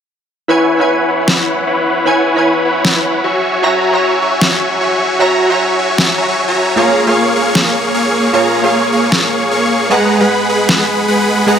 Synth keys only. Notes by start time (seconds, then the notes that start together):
0.48 E4 B4 C#5 G#5
0.77 E4 B4 C#5
0.81 G#5
2.05 E4 B4 C#5 G#5
2.34 E4 B4 C#5 G#5
3.62 F#4 C#5 E5 A#5
3.91 F#4 C#5 E5
3.95 A#5
5.19 F#4 C#5 E5 A#5
5.48 F#4 C#5 E5 A#5
6.76 A#3 F4 G#4 C#5
7.05 A#3 F4 G#4 F5
8.33 A#3 F4 G#4 C#5
8.62 A#3 F4 G#4
8.66 F5
9.89 G#3 G#4 B4 F#5
10.18 G#3 G#4 B4
11.46 G#3 G#4 B4 F#5